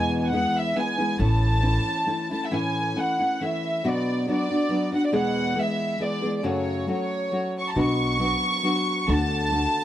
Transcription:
Already playing: E2 B2 E3 G#3 B3 E4 G#5
0.17 G#5
0.26 F#5
0.32 E3 G#3 B3 E4
0.58 E5
0.76 E3 G#3 B3 E4 G#5
0.98 E3 G#3 B3 E4
1.19 A1 A2 E3 A3 C#4 E4 A5
1.62 E3 A3 C#4 E4
2.06 E3 A3 C#4 E4
2.31 A3 C#4 E4 A5
2.44 E5
2.51 A2 E3 A3 C#4 E4 G#5
2.96 E3 A3 C#4 E4 F#5
3.19 A3 C#4 E4
3.41 E3 A3 C#4 E4 E5
3.84 B2 F#3 B3 D4 F#4 D5
4.28 F#3 B3 D4 F#4 D5
4.50 B3 D4 F#4
4.69 F#3 B3 D4 F#4
4.92 B3 D4 F#4 F#5
5.06 D5
5.12 E2 B2 E3 G#3 B3 G#4 F#5
5.55 E3 G#3 B3 G#4
5.59 E5
5.98 E3 G#3 B3 G#4 D5
6.22 E3 G#3 B3 G#4
6.38 D5
6.43 F#2 C#3 F#3 A3 C#4 F#4 C#5
6.87 F#3 A3 C#4 F#4 C#5
7.31 F#3 A3 C#4 F#4
7.59 C#6
7.69 A5
7.75 B1 B2 F#3 B3 D4 F#4
7.80 C#6
8.19 F#3 B3 D4 F#4
8.63 F#3 B3 D4 F#4
9.08 D2 D3 A3 D4 F#4 A5
9.51 D3 A3 D4 F#4

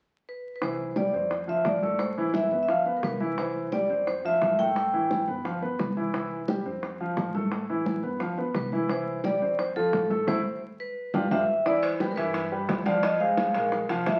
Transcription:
0.29 B4
0.56 B4
0.61 C2 E3 E4 C5, high bongo, high conga
0.80 high conga
0.96 G3 G4 D5, high bongo, high conga
1.13 F2 C4 C5
1.31 C5, high bongo, high conga
1.47 F3 F4 E5, high conga
1.65 A1 D5, high bongo, low bongo, high conga
1.83 A3 A4, high conga
1.99 C5, high bongo, high conga
2.17 E3 E4, high conga
2.34 E5, high bongo, high conga
2.51 G1 B3 B4, high bongo, high conga
2.63 E5
2.68 F3 F4 F5, high bongo
2.85 B3 B4, high bongo, high conga
2.97 A#4
3.03 C2 B4, high bongo, low bongo, high conga
3.20 E3 E4, high bongo, high conga
3.38 E3 E4 C5, high bongo, high conga
3.55 high conga
3.72 G3 G4 D5, high bongo, high conga
3.89 F2 C4 C5
4.07 C5, high bongo, high conga
4.24 F3 F4 E5, high conga
4.41 A1, high bongo, low bongo, high conga
4.59 A3 A4 G5, high conga
4.76 high bongo, high conga
4.93 E3 E4, high conga
5.11 high bongo, high conga
5.28 G1 B3 B4, high bongo, high conga
5.45 F3 F4, high bongo, high conga
5.62 B3 B4, high bongo, high conga
5.79 C2, high bongo, low bongo, high conga
5.97 E3 E4, high bongo
6.14 E3 E4, high bongo, high conga
6.31 high conga
6.48 G3 G4, high bongo, high conga
6.66 F2 C4 C5
6.83 high bongo, high conga
7.00 F3 F4, high conga
7.17 A1, high bongo, low bongo, high conga
7.35 A3 A4, high conga
7.52 high bongo, high conga
7.69 E3 E4, high conga
7.86 high bongo, high conga
8.03 G1 B3 B4, high bongo, high conga
8.20 F3 F4, high bongo, high conga
8.38 B3 B4, high bongo, high conga
8.55 C2 B4, high bongo, low bongo, high conga
8.72 E3 E4, high bongo, high conga
8.89 E3 E4 C5, high bongo, high conga
9.07 high conga
9.24 G3 G4 D5, high bongo, high conga
9.42 F2 C4 C5
9.59 C5, high bongo, high conga
9.76 F3 F4 A4, high conga
9.93 A1, high bongo, low bongo, high conga
10.10 A3 A4, high conga
10.27 A1 A3 C4 E4 C5, low bongo, high conga
10.80 B4
11.14 G1 D4 F4 G4, low bongo, high conga
11.31 G1 D4 F4 G4 E5, low bongo, high conga
11.66 E3 E4 D5 E5, high bongo, high conga
11.82 C5, high conga, high timbale
12.00 G3 G4 B4, high bongo, high conga, low timbale
12.11 A#4
12.16 G2 E3 E4 B4 E5, high timbale
12.34 high bongo, high conga, high timbale
12.52 G3 G4 B4, high conga
12.69 F2, high bongo, low bongo, high conga, high timbale, low timbale
12.86 F3 F4 D5 F5, high conga, high timbale
13.03 D#5, high bongo, high conga, high timbale
13.20 G#3 G#4 C5 F5, high conga
13.37 high bongo, high conga, high timbale, low timbale
13.54 A#1 G#3 G#4 A#4, high bongo, high conga, high timbale
13.72 high bongo, high conga
13.89 C2 F3 F4 F5, high bongo, high conga, high timbale
14.06 D#2 E5, high bongo, low bongo, high conga, high timbale, low timbale

